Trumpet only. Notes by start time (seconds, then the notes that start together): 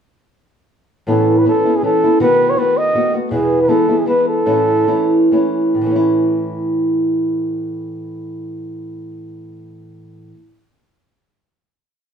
1.08 A4
1.38 B4
1.48 A4
1.76 G#4
1.85 A4
2.21 B4
2.50 C#5
2.58 B4
2.78 D#5
3.32 G#4
3.62 B4
3.69 A4
3.99 G#4
4.08 B4
4.28 A4